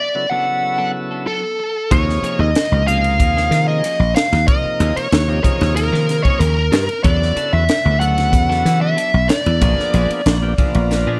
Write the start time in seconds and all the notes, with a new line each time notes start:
0.00 D5
0.15 C#3 F#3 B3 E4 A4, muted clean electric guitar stroke
0.30 C#3 F#3 B3 D4 E4 A4 F#5
0.47 muted clean electric guitar stroke
0.63 muted clean electric guitar stroke
0.78 F#3 B3 D4 A4
1.11 B3 D4 A4
1.26 F#3 B3 D4 A4
1.43 muted clean electric guitar stroke
1.59 muted clean electric guitar stroke
1.90 D#2 C3 F3 A#3 C#4 D#4 G#4 C#5, kick, hi-hat pedal, ride
2.08 muted clean electric guitar stroke, snare
2.23 F3 A#3 C#4 G#4, muted slap bass stroke, hi-hat pedal, ride
2.39 D#2 D#5
2.55 snare, hi-hat pedal, ride
2.71 C#2 C3 F3 A#3 D#4 G4, muted clean electric guitar stroke
2.86 C3 F3 A#3 C#4 D#4 G#4 F5, hi-hat pedal, ride
3.04 muted clean electric guitar stroke, ride
3.20 D#2, muted clean electric guitar stroke, kick, hi-hat pedal, ride
3.37 F3 A#3 C#4 G#4, snare
3.51 D#3, muted clean electric guitar stroke, snare, hi-hat pedal, ride
3.68 A#3 C#4 G#4 D#5
3.84 F3 A#3 C#4 G#4, hi-hat pedal, ride
4.00 A#1
4.16 F5, muted clean electric guitar stroke, snare, hi-hat pedal, ride
4.32 D#2, snare, ride
4.47 C3 F3 A#3 D#4 A#4 D#5, kick, hi-hat pedal, ride
4.64 muted slap bass stroke, muted clean electric guitar stroke
4.80 D#2 F3 A#3 C#4 G#4, hi-hat pedal, ride
4.96 C#5, muted slap bass stroke, muted clean electric guitar stroke, ride
5.12 D#2, snare, hi-hat pedal, ride
5.28 C3 F3 A#3 D#4 G4, muted clean electric guitar stroke
5.43 C3 F3 A#3 C#4 D#4 G#4 C#5, kick, hi-hat pedal, ride
5.60 D#2, muted clean electric guitar stroke, snare, ride
5.76 A#4, muted clean electric guitar stroke, hi-hat pedal, ride
5.92 D#3 F3 A#3 C#4 G#4, snare
6.08 muted clean electric guitar stroke, snare, hi-hat pedal, ride
6.23 A#3 C#4 G#4 C#5, kick, ride
6.39 D#2 F3 A#3 C#4 G#4 A#4, hi-hat pedal, ride
6.57 muted clean electric guitar stroke
6.72 G2, muted clean electric guitar stroke, snare, hi-hat pedal, ride
6.89 ride
7.03 E2 C#3 F#3 B3 D4 E4 A4 D5, kick, hi-hat pedal, ride
7.21 muted clean electric guitar stroke, snare
7.36 F#3 B3 D4 A4, muted slap bass stroke, hi-hat pedal, ride
7.53 E2 E5, muted clean electric guitar stroke
7.69 snare, hi-hat pedal, ride
7.84 D2 C#3 F#3 B3 E4 A4, muted clean electric guitar stroke
8.00 C#3 F#3 B3 D4 E4 A4 F#5, hi-hat pedal, ride
8.17 muted clean electric guitar stroke, snare, ride
8.32 E2, muted clean electric guitar stroke, kick, hi-hat pedal, ride
8.49 F#3 B3 D4 A4, snare
8.65 E3, muted clean electric guitar stroke, snare, hi-hat pedal, ride
8.81 B3 D4 A4 E5
8.96 F#3 B3 D4 A4, hi-hat pedal, ride
9.14 B1
9.29 D5, snare, hi-hat pedal, ride
9.46 E2, ride
9.60 A#1 F3 A#3 B3 D4 G#4, kick, hi-hat pedal, ride
9.78 muted clean electric guitar stroke, muted slap bass stroke, snare
9.93 A#1 F3 B3 D4 G#4, hi-hat pedal, ride
10.11 muted clean electric guitar stroke, ride
10.26 A#1, snare, hi-hat pedal, ride
10.42 F3 A#3 B3 D4 G4, muted clean electric guitar stroke
10.58 F3 A#3 B3 D4 F4 G#4, kick, hi-hat pedal, ride
10.75 A#1, muted clean electric guitar stroke, ride
10.91 muted clean electric guitar stroke, snare, hi-hat pedal
11.07 A#2 F3 B3 D4 G#4